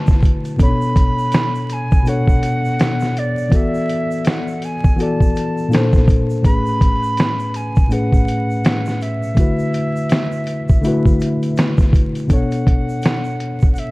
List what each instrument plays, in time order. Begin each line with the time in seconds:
Already playing: tine electric piano D3 A3 E4 F#4 B4, flute A5
0.07 kick, shaker
0.11 snare
0.22 kick, closed hi-hat, shaker
0.45 closed hi-hat, shaker
0.56 tine electric piano B2 B3 C#4, kick, closed hi-hat, shaker
0.61 tine electric piano A4 C#5, flute B5
0.66 tine electric piano D4
0.81 shaker
0.96 kick, closed hi-hat, shaker
1.19 shaker
1.32 snare, closed hi-hat, shaker
1.55 shaker
1.69 flute G#5, closed hi-hat, shaker
1.91 kick, shaker
2.03 tine electric piano B2 B3 D4, shaker
2.07 tine electric piano A4 C#5, flute F#5, closed hi-hat
2.27 kick, shaker
2.43 closed hi-hat, shaker
2.65 shaker
2.79 snare, closed hi-hat, shaker
3.00 snare, shaker
3.16 flute D5, closed hi-hat, shaker
3.38 shaker
3.49 tine electric piano E3 B3 F#4, kick, closed hi-hat, shaker
3.54 tine electric piano A4 D5, flute E5
3.74 shaker
3.89 closed hi-hat, shaker
4.11 shaker
4.25 flute F#5, snare, closed hi-hat, shaker
4.48 shaker
4.62 flute G#5, closed hi-hat, shaker
4.84 kick, shaker
4.96 tine electric piano E3 B3 F#4, shaker
5.00 tine electric piano A4 D5, flute A5, closed hi-hat
5.20 kick, shaker
5.36 closed hi-hat, shaker
5.58 shaker
5.68 tine electric piano A#2 A#3 D4, shaker
5.73 tine electric piano A4 C5, snare, closed hi-hat
5.93 kick, snare, shaker
6.08 kick, closed hi-hat, shaker
6.30 shaker
6.42 tine electric piano A2 A3 C#4, flute B5, kick, closed hi-hat, shaker
6.46 tine electric piano G#4 B4
6.66 shaker
6.81 kick, closed hi-hat, shaker
7.03 shaker
7.17 snare, closed hi-hat, shaker
7.39 shaker
7.54 flute G#5, closed hi-hat, shaker
7.76 kick, shaker
7.88 tine electric piano A2 A3 C#4, shaker
7.92 tine electric piano G#4 B4, flute F#5, closed hi-hat
8.13 kick, shaker
8.28 closed hi-hat, shaker
8.51 shaker
8.64 snare, closed hi-hat, shaker
8.86 snare, shaker
9.01 flute E5, closed hi-hat, shaker
9.23 shaker
9.34 tine electric piano D3 A3 E4, kick, closed hi-hat, shaker
9.39 tine electric piano F#4 B4
9.59 shaker
9.74 closed hi-hat, shaker
9.96 shaker
10.10 snare, closed hi-hat, shaker
10.32 shaker
10.47 closed hi-hat, shaker
10.69 kick, shaker
10.81 tine electric piano D3 A3 E4, closed hi-hat, shaker
10.86 tine electric piano F#4 B4
11.05 kick, shaker
11.20 closed hi-hat, shaker
11.43 closed hi-hat, shaker
11.57 snare, closed hi-hat, shaker
11.78 kick, snare, shaker
11.93 kick, closed hi-hat, shaker
12.15 closed hi-hat, shaker
12.27 tine electric piano B2 B3 D4, kick, closed hi-hat, shaker
12.32 tine electric piano A4 C#5, flute F#5
12.51 closed hi-hat, shaker
12.67 kick, closed hi-hat
12.89 shaker
13.02 snare, closed hi-hat, shaker
13.24 shaker
13.40 closed hi-hat
13.61 kick, shaker
13.73 flute F#5, shaker
13.78 flute E5, closed hi-hat